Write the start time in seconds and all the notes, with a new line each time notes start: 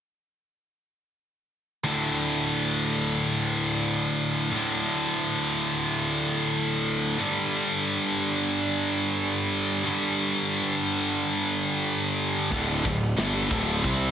1.84 D2 A2 D3
4.51 D2 A2 D3
7.19 G2 D3 G3
9.84 G2 D3 G3
12.51 D1 D2 A2 D3, kick, crash
12.85 D1 D2 A2, kick, crash
13.17 G1 G2 D3 G3, snare, crash
13.50 D1 D2 A2 D3, kick, crash
13.83 C2 C3 G3 C4, kick, crash